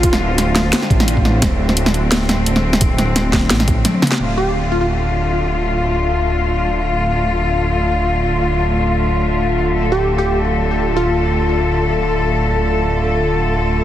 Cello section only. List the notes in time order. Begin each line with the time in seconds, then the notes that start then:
Already playing: D3 A3 F4
1.43 C4
4.20 D3 A3 F4
9.75 A4